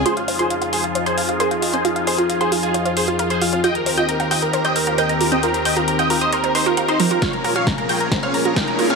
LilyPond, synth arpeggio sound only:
\new Staff \with { instrumentName = "Synth arpeggio sound" } { \time 4/4 \key f \minor \tempo 4 = 134 f'16 r16 c''16 f'16 r16 f''16 f'16 r16 c''16 c''16 r16 f'16 bes'16 r16 f'16 c'16 | f'16 r16 c''16 f'16 r16 f''16 f'16 r16 c''16 c''16 r16 f'16 bes'16 r16 f'16 c'16 | f'16 r16 c''16 f'16 r16 f''16 f'16 r16 c''16 c''16 r16 f'16 bes'16 r16 f'16 c'16 | f'16 r16 c''16 f'16 r16 f''16 f'16 r16 c''16 c''16 bes'16 f'16 f''16 ees'16 f16 f'16 |
f'16 r16 f'16 f'16 r16 f''16 f'16 r16 c''16 c''16 r16 f'16 bes'16 r16 f'16 c'16 | }